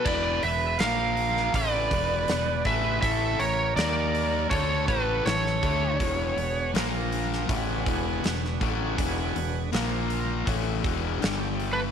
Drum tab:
CC |x---------------|----------------|----------------|----------------|
HH |--o-o-o-o-o-o-o-|o-o-o-o-o-o-o-o-|o-o-o-o-o-o-o-o-|o-o-o-o-o-o-o-o-|
SD |----o--o----o---|----o-------oo--|----o--o----oo--|----o-------o---|
BD |o-------o-o---o-|o-------o-o---o-|o-------o-o---o-|o-------o-o-----|